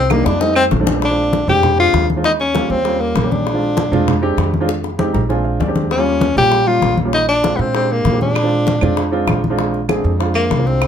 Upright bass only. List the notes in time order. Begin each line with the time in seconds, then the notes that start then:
Already playing: C2
0.26 F2
0.72 A#1
1.48 F2
1.93 D#2
2.70 D#2
3.15 A#1
3.92 F2
4.37 F2
5.14 A#1
5.60 D#2
6.36 A#1
6.82 A#1
7.59 A#2
8.05 A#2
8.82 F2
9.27 A#1
10.04 F2
10.50 C2